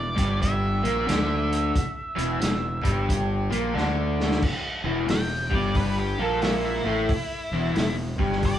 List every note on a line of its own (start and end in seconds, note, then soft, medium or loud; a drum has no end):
0.00 0.15 E1 medium
0.00 0.38 D5 medium
0.16 0.81 G1 medium
0.16 0.82 G2 medium
0.16 0.83 G3 medium
0.16 kick medium
0.16 closed hi-hat medium
0.42 3.05 E5 medium
0.42 kick medium
0.42 closed hi-hat medium
0.83 1.07 A#1 medium
0.83 1.07 A#2 medium
0.83 1.07 A#3 loud
0.83 closed hi-hat medium
1.07 1.71 D2 medium
1.07 1.74 D3 loud
1.07 1.74 D4 medium
1.07 snare loud
1.07 closed hi-hat medium
1.53 closed hi-hat medium
1.76 kick loud
1.76 closed hi-hat medium
2.16 2.40 E1 medium
2.16 2.39 E2 medium
2.16 2.41 E3 medium
2.16 closed hi-hat medium
2.40 2.82 E1 medium
2.40 2.75 E2 medium
2.40 snare loud
2.40 closed hi-hat medium
2.83 3.47 G1 medium
2.83 3.49 G2 medium
2.83 3.50 G3 loud
2.83 kick medium
2.83 closed hi-hat medium
3.09 kick medium
3.09 closed hi-hat medium
3.50 3.73 A#1 medium
3.50 3.74 A#2 medium
3.50 3.74 A#3 medium
3.50 closed hi-hat medium
3.74 4.38 D2 medium
3.74 4.41 D3 medium
3.74 4.41 D4 medium
3.74 snare medium
4.20 snare medium
4.31 snare medium
4.42 kick loud
4.42 crash loud
4.84 5.07 E1 medium
4.84 5.08 E2 medium
4.84 5.08 E3 medium
5.09 5.49 E1 medium
5.09 5.43 E2 medium
5.09 5.53 G5 medium
5.09 snare loud
5.09 open hi-hat medium
5.51 6.14 G1 medium
5.51 6.17 G2 medium
5.51 6.17 G3 medium
5.51 5.76 D5 medium
5.51 kick medium
5.75 5.98 B4 medium
5.75 kick medium
5.75 open hi-hat medium
5.99 6.20 G4 medium
6.18 6.81 A#1 medium
6.18 6.84 A#2 medium
6.18 6.84 A#3 medium
6.18 6.42 A4 medium
6.41 6.63 E4 medium
6.41 snare loud
6.41 open hi-hat soft
6.65 7.94 E4 medium
6.84 7.07 A1 medium
6.84 7.08 A2 medium
6.84 7.09 A3 medium
7.09 kick loud
7.09 open hi-hat medium
7.51 7.74 E1 medium
7.51 7.75 E2 loud
7.51 7.76 E3 medium
7.76 8.16 E1 medium
7.76 8.10 E2 medium
7.76 snare loud
7.76 open hi-hat medium
8.18 8.59 G1 medium
8.18 8.59 G2 medium
8.18 8.59 G3 medium
8.18 kick medium
8.32 snare soft
8.43 8.59 D5 loud
8.43 kick medium
8.43 open hi-hat medium